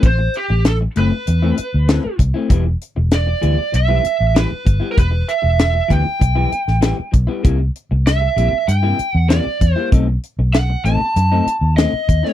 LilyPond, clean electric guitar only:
\new Staff \with { instrumentName = "Clean electric guitar" } { \time 4/4 \key e \minor \tempo 4 = 97 r4. <a, a c' e'>16 r8 <a, a c' e'>16 r8 <a, a c' e'>16 r8 <a c' e'>16 | <e g b e'>16 r4 r16 <e g b e'>16 r8 <e g b e'>16 r8 <e g b e'>16 r8 <g b e'>16 | r4. <e g b e'>16 r8 <e g b e'>16 r8 <e g b e'>16 r8 <g b e'>16 | <c g bes e'>16 r4 r16 <c g bes e'>16 r8 <c g bes e'>16 r8 <c g bes e'>16 r8 <g bes e'>16 |
<b, a c' dis'>16 r4 r16 <b, a c' dis'>16 r8 <b, a c' dis'>16 r8 <b, a c' dis'>16 r8 <a c' dis'>16 | }